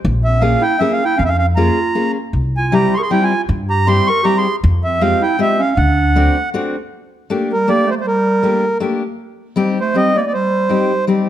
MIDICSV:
0, 0, Header, 1, 5, 480
1, 0, Start_track
1, 0, Tempo, 382409
1, 45, Time_signature, 3, 2, 24, 8
1, 8685, Tempo, 378788
1, 14226, End_track
2, 0, Start_track
2, 0, Title_t, "Accordion"
2, 0, Program_c, 0, 21
2, 302, Note_on_c, 0, 76, 79
2, 508, Note_on_c, 0, 77, 84
2, 528, Note_off_c, 0, 76, 0
2, 776, Note_on_c, 0, 79, 98
2, 783, Note_off_c, 0, 77, 0
2, 991, Note_on_c, 0, 76, 94
2, 1004, Note_off_c, 0, 79, 0
2, 1160, Note_on_c, 0, 77, 77
2, 1161, Note_off_c, 0, 76, 0
2, 1308, Note_on_c, 0, 79, 93
2, 1309, Note_off_c, 0, 77, 0
2, 1479, Note_on_c, 0, 77, 84
2, 1480, Note_off_c, 0, 79, 0
2, 1547, Note_off_c, 0, 77, 0
2, 1567, Note_on_c, 0, 76, 83
2, 1609, Note_on_c, 0, 77, 91
2, 1622, Note_off_c, 0, 76, 0
2, 1716, Note_off_c, 0, 77, 0
2, 1735, Note_on_c, 0, 77, 91
2, 1835, Note_off_c, 0, 77, 0
2, 1956, Note_on_c, 0, 82, 92
2, 2655, Note_off_c, 0, 82, 0
2, 3226, Note_on_c, 0, 80, 83
2, 3436, Note_off_c, 0, 80, 0
2, 3437, Note_on_c, 0, 82, 96
2, 3690, Note_on_c, 0, 84, 81
2, 3695, Note_off_c, 0, 82, 0
2, 3724, Note_on_c, 0, 85, 71
2, 3739, Note_off_c, 0, 84, 0
2, 3783, Note_off_c, 0, 85, 0
2, 3797, Note_on_c, 0, 84, 84
2, 3904, Note_off_c, 0, 84, 0
2, 3904, Note_on_c, 0, 79, 86
2, 4057, Note_on_c, 0, 80, 84
2, 4065, Note_off_c, 0, 79, 0
2, 4287, Note_off_c, 0, 80, 0
2, 4643, Note_on_c, 0, 82, 93
2, 4865, Note_on_c, 0, 84, 127
2, 4866, Note_off_c, 0, 82, 0
2, 5111, Note_on_c, 0, 85, 115
2, 5128, Note_off_c, 0, 84, 0
2, 5335, Note_on_c, 0, 82, 107
2, 5337, Note_off_c, 0, 85, 0
2, 5494, Note_on_c, 0, 84, 98
2, 5498, Note_off_c, 0, 82, 0
2, 5722, Note_off_c, 0, 84, 0
2, 6076, Note_on_c, 0, 76, 76
2, 6289, Note_on_c, 0, 77, 103
2, 6297, Note_off_c, 0, 76, 0
2, 6555, Note_off_c, 0, 77, 0
2, 6556, Note_on_c, 0, 79, 86
2, 6775, Note_off_c, 0, 79, 0
2, 6786, Note_on_c, 0, 76, 99
2, 7030, Note_on_c, 0, 77, 87
2, 7042, Note_off_c, 0, 76, 0
2, 7243, Note_on_c, 0, 78, 78
2, 7251, Note_off_c, 0, 77, 0
2, 8153, Note_off_c, 0, 78, 0
2, 9452, Note_on_c, 0, 70, 80
2, 9660, Note_on_c, 0, 74, 99
2, 9666, Note_off_c, 0, 70, 0
2, 9922, Note_off_c, 0, 74, 0
2, 9929, Note_on_c, 0, 72, 82
2, 9986, Note_off_c, 0, 72, 0
2, 10060, Note_on_c, 0, 72, 50
2, 10133, Note_off_c, 0, 72, 0
2, 10145, Note_on_c, 0, 70, 78
2, 11041, Note_off_c, 0, 70, 0
2, 12341, Note_on_c, 0, 72, 80
2, 12543, Note_on_c, 0, 75, 105
2, 12546, Note_off_c, 0, 72, 0
2, 12801, Note_off_c, 0, 75, 0
2, 12803, Note_on_c, 0, 74, 106
2, 12907, Note_off_c, 0, 74, 0
2, 12926, Note_on_c, 0, 74, 56
2, 13004, Note_off_c, 0, 74, 0
2, 13013, Note_on_c, 0, 72, 87
2, 13919, Note_off_c, 0, 72, 0
2, 14226, End_track
3, 0, Start_track
3, 0, Title_t, "Steel-string acoustic guitar"
3, 0, Program_c, 1, 25
3, 521, Note_on_c, 1, 58, 62
3, 527, Note_on_c, 1, 61, 58
3, 528, Note_on_c, 1, 65, 63
3, 531, Note_on_c, 1, 68, 70
3, 782, Note_off_c, 1, 58, 0
3, 785, Note_off_c, 1, 61, 0
3, 785, Note_off_c, 1, 65, 0
3, 786, Note_off_c, 1, 68, 0
3, 1008, Note_on_c, 1, 61, 51
3, 1009, Note_on_c, 1, 58, 63
3, 1014, Note_on_c, 1, 65, 49
3, 1022, Note_on_c, 1, 68, 69
3, 1265, Note_off_c, 1, 61, 0
3, 1266, Note_off_c, 1, 58, 0
3, 1269, Note_off_c, 1, 65, 0
3, 1271, Note_off_c, 1, 68, 0
3, 1970, Note_on_c, 1, 58, 62
3, 1970, Note_on_c, 1, 61, 62
3, 1975, Note_on_c, 1, 65, 62
3, 1983, Note_on_c, 1, 68, 61
3, 2228, Note_off_c, 1, 61, 0
3, 2229, Note_off_c, 1, 58, 0
3, 2231, Note_off_c, 1, 65, 0
3, 2235, Note_off_c, 1, 68, 0
3, 2445, Note_on_c, 1, 58, 49
3, 2450, Note_on_c, 1, 61, 51
3, 2451, Note_on_c, 1, 65, 50
3, 2456, Note_on_c, 1, 68, 66
3, 2709, Note_off_c, 1, 58, 0
3, 2709, Note_off_c, 1, 61, 0
3, 2712, Note_off_c, 1, 65, 0
3, 2713, Note_off_c, 1, 68, 0
3, 3414, Note_on_c, 1, 55, 71
3, 3414, Note_on_c, 1, 60, 56
3, 3422, Note_on_c, 1, 64, 58
3, 3428, Note_on_c, 1, 67, 73
3, 3675, Note_off_c, 1, 55, 0
3, 3677, Note_off_c, 1, 60, 0
3, 3680, Note_off_c, 1, 64, 0
3, 3683, Note_off_c, 1, 67, 0
3, 3898, Note_on_c, 1, 60, 59
3, 3899, Note_on_c, 1, 55, 61
3, 3905, Note_on_c, 1, 64, 55
3, 3908, Note_on_c, 1, 67, 64
3, 4159, Note_off_c, 1, 55, 0
3, 4160, Note_off_c, 1, 60, 0
3, 4161, Note_off_c, 1, 64, 0
3, 4164, Note_off_c, 1, 67, 0
3, 4857, Note_on_c, 1, 55, 69
3, 4861, Note_on_c, 1, 60, 63
3, 4870, Note_on_c, 1, 67, 84
3, 4872, Note_on_c, 1, 64, 61
3, 5117, Note_off_c, 1, 55, 0
3, 5120, Note_off_c, 1, 60, 0
3, 5120, Note_off_c, 1, 64, 0
3, 5122, Note_off_c, 1, 67, 0
3, 5327, Note_on_c, 1, 55, 66
3, 5330, Note_on_c, 1, 60, 54
3, 5334, Note_on_c, 1, 67, 58
3, 5336, Note_on_c, 1, 64, 50
3, 5589, Note_off_c, 1, 55, 0
3, 5591, Note_off_c, 1, 60, 0
3, 5593, Note_off_c, 1, 64, 0
3, 5594, Note_off_c, 1, 67, 0
3, 6290, Note_on_c, 1, 56, 61
3, 6292, Note_on_c, 1, 60, 54
3, 6296, Note_on_c, 1, 65, 69
3, 6302, Note_on_c, 1, 67, 76
3, 6548, Note_off_c, 1, 60, 0
3, 6549, Note_off_c, 1, 56, 0
3, 6552, Note_off_c, 1, 65, 0
3, 6553, Note_off_c, 1, 67, 0
3, 6762, Note_on_c, 1, 56, 62
3, 6765, Note_on_c, 1, 60, 52
3, 6772, Note_on_c, 1, 65, 52
3, 6773, Note_on_c, 1, 67, 78
3, 7022, Note_off_c, 1, 56, 0
3, 7025, Note_off_c, 1, 60, 0
3, 7025, Note_off_c, 1, 65, 0
3, 7028, Note_off_c, 1, 67, 0
3, 7725, Note_on_c, 1, 57, 62
3, 7732, Note_on_c, 1, 60, 63
3, 7736, Note_on_c, 1, 62, 66
3, 7739, Note_on_c, 1, 66, 79
3, 7985, Note_off_c, 1, 57, 0
3, 7987, Note_off_c, 1, 60, 0
3, 7987, Note_off_c, 1, 62, 0
3, 7991, Note_off_c, 1, 66, 0
3, 8206, Note_on_c, 1, 57, 56
3, 8211, Note_on_c, 1, 60, 64
3, 8215, Note_on_c, 1, 62, 64
3, 8217, Note_on_c, 1, 66, 72
3, 8469, Note_off_c, 1, 57, 0
3, 8471, Note_off_c, 1, 60, 0
3, 8471, Note_off_c, 1, 62, 0
3, 8474, Note_off_c, 1, 66, 0
3, 9167, Note_on_c, 1, 57, 71
3, 9171, Note_on_c, 1, 58, 62
3, 9176, Note_on_c, 1, 62, 55
3, 9179, Note_on_c, 1, 67, 76
3, 9429, Note_off_c, 1, 57, 0
3, 9432, Note_off_c, 1, 58, 0
3, 9432, Note_off_c, 1, 62, 0
3, 9435, Note_off_c, 1, 67, 0
3, 9643, Note_on_c, 1, 57, 62
3, 9649, Note_on_c, 1, 58, 52
3, 9649, Note_on_c, 1, 62, 43
3, 9657, Note_on_c, 1, 67, 63
3, 9907, Note_off_c, 1, 57, 0
3, 9907, Note_off_c, 1, 58, 0
3, 9910, Note_off_c, 1, 62, 0
3, 9912, Note_off_c, 1, 67, 0
3, 10595, Note_on_c, 1, 57, 54
3, 10605, Note_on_c, 1, 58, 65
3, 10605, Note_on_c, 1, 62, 54
3, 10612, Note_on_c, 1, 67, 69
3, 10861, Note_off_c, 1, 57, 0
3, 10862, Note_off_c, 1, 58, 0
3, 10865, Note_off_c, 1, 62, 0
3, 10866, Note_off_c, 1, 67, 0
3, 11071, Note_on_c, 1, 57, 68
3, 11075, Note_on_c, 1, 58, 60
3, 11079, Note_on_c, 1, 62, 63
3, 11086, Note_on_c, 1, 67, 74
3, 11338, Note_off_c, 1, 57, 0
3, 11338, Note_off_c, 1, 58, 0
3, 11342, Note_off_c, 1, 62, 0
3, 11343, Note_off_c, 1, 67, 0
3, 12028, Note_on_c, 1, 55, 70
3, 12036, Note_on_c, 1, 63, 62
3, 12038, Note_on_c, 1, 60, 68
3, 12043, Note_on_c, 1, 67, 95
3, 12296, Note_off_c, 1, 55, 0
3, 12298, Note_off_c, 1, 60, 0
3, 12300, Note_off_c, 1, 63, 0
3, 12303, Note_off_c, 1, 67, 0
3, 12519, Note_on_c, 1, 55, 55
3, 12524, Note_on_c, 1, 60, 51
3, 12526, Note_on_c, 1, 63, 50
3, 12531, Note_on_c, 1, 67, 61
3, 12782, Note_off_c, 1, 55, 0
3, 12783, Note_off_c, 1, 60, 0
3, 12785, Note_off_c, 1, 63, 0
3, 12786, Note_off_c, 1, 67, 0
3, 13464, Note_on_c, 1, 55, 57
3, 13468, Note_on_c, 1, 60, 50
3, 13471, Note_on_c, 1, 63, 56
3, 13482, Note_on_c, 1, 67, 65
3, 13735, Note_off_c, 1, 55, 0
3, 13737, Note_off_c, 1, 60, 0
3, 13740, Note_off_c, 1, 63, 0
3, 13742, Note_off_c, 1, 67, 0
3, 13949, Note_on_c, 1, 55, 62
3, 13956, Note_on_c, 1, 63, 62
3, 13957, Note_on_c, 1, 60, 65
3, 13965, Note_on_c, 1, 67, 68
3, 14220, Note_off_c, 1, 55, 0
3, 14222, Note_off_c, 1, 60, 0
3, 14223, Note_off_c, 1, 63, 0
3, 14226, Note_off_c, 1, 67, 0
3, 14226, End_track
4, 0, Start_track
4, 0, Title_t, "Clarinet"
4, 0, Program_c, 2, 71
4, 320, Note_on_c, 2, 60, 44
4, 515, Note_off_c, 2, 60, 0
4, 529, Note_on_c, 2, 61, 61
4, 758, Note_off_c, 2, 61, 0
4, 765, Note_on_c, 2, 64, 78
4, 970, Note_off_c, 2, 64, 0
4, 978, Note_on_c, 2, 61, 68
4, 1123, Note_off_c, 2, 61, 0
4, 1130, Note_on_c, 2, 61, 61
4, 1293, Note_off_c, 2, 61, 0
4, 1319, Note_on_c, 2, 64, 76
4, 1461, Note_off_c, 2, 64, 0
4, 1468, Note_on_c, 2, 61, 86
4, 1530, Note_off_c, 2, 61, 0
4, 1537, Note_on_c, 2, 60, 62
4, 1597, Note_off_c, 2, 60, 0
4, 1604, Note_on_c, 2, 61, 65
4, 1711, Note_off_c, 2, 61, 0
4, 1718, Note_on_c, 2, 61, 50
4, 1822, Note_off_c, 2, 61, 0
4, 1944, Note_on_c, 2, 65, 76
4, 2649, Note_off_c, 2, 65, 0
4, 3215, Note_on_c, 2, 65, 53
4, 3410, Note_off_c, 2, 65, 0
4, 3437, Note_on_c, 2, 67, 78
4, 3670, Note_off_c, 2, 67, 0
4, 3728, Note_on_c, 2, 68, 78
4, 3754, Note_off_c, 2, 68, 0
4, 3755, Note_on_c, 2, 70, 66
4, 3795, Note_off_c, 2, 70, 0
4, 3816, Note_on_c, 2, 68, 71
4, 3904, Note_off_c, 2, 68, 0
4, 3921, Note_on_c, 2, 64, 74
4, 4044, Note_off_c, 2, 64, 0
4, 4051, Note_on_c, 2, 65, 73
4, 4284, Note_off_c, 2, 65, 0
4, 4625, Note_on_c, 2, 67, 62
4, 4834, Note_off_c, 2, 67, 0
4, 4860, Note_on_c, 2, 67, 67
4, 5100, Note_off_c, 2, 67, 0
4, 5130, Note_on_c, 2, 70, 86
4, 5300, Note_off_c, 2, 70, 0
4, 5307, Note_on_c, 2, 67, 97
4, 5467, Note_off_c, 2, 67, 0
4, 5498, Note_on_c, 2, 68, 74
4, 5724, Note_off_c, 2, 68, 0
4, 6077, Note_on_c, 2, 60, 51
4, 6276, Note_off_c, 2, 60, 0
4, 6283, Note_on_c, 2, 60, 71
4, 6526, Note_off_c, 2, 60, 0
4, 6542, Note_on_c, 2, 64, 77
4, 6741, Note_off_c, 2, 64, 0
4, 6749, Note_on_c, 2, 60, 70
4, 6997, Note_off_c, 2, 60, 0
4, 7015, Note_on_c, 2, 61, 84
4, 7218, Note_off_c, 2, 61, 0
4, 7226, Note_on_c, 2, 62, 75
4, 8145, Note_off_c, 2, 62, 0
4, 9456, Note_on_c, 2, 55, 62
4, 9647, Note_off_c, 2, 55, 0
4, 9655, Note_on_c, 2, 58, 75
4, 9878, Note_off_c, 2, 58, 0
4, 9886, Note_on_c, 2, 57, 89
4, 9953, Note_off_c, 2, 57, 0
4, 10020, Note_on_c, 2, 57, 58
4, 10094, Note_off_c, 2, 57, 0
4, 10101, Note_on_c, 2, 55, 77
4, 11019, Note_off_c, 2, 55, 0
4, 12324, Note_on_c, 2, 57, 71
4, 12517, Note_off_c, 2, 57, 0
4, 12541, Note_on_c, 2, 60, 77
4, 12770, Note_off_c, 2, 60, 0
4, 12777, Note_on_c, 2, 58, 75
4, 12903, Note_off_c, 2, 58, 0
4, 12910, Note_on_c, 2, 58, 46
4, 12990, Note_off_c, 2, 58, 0
4, 13019, Note_on_c, 2, 55, 67
4, 13922, Note_off_c, 2, 55, 0
4, 14226, End_track
5, 0, Start_track
5, 0, Title_t, "Upright bass"
5, 0, Program_c, 3, 32
5, 57, Note_on_c, 3, 34, 94
5, 675, Note_off_c, 3, 34, 0
5, 1494, Note_on_c, 3, 41, 81
5, 2117, Note_off_c, 3, 41, 0
5, 2927, Note_on_c, 3, 36, 69
5, 3556, Note_off_c, 3, 36, 0
5, 4377, Note_on_c, 3, 43, 87
5, 4998, Note_off_c, 3, 43, 0
5, 5818, Note_on_c, 3, 41, 94
5, 6436, Note_off_c, 3, 41, 0
5, 7245, Note_on_c, 3, 38, 87
5, 7869, Note_off_c, 3, 38, 0
5, 14226, End_track
0, 0, End_of_file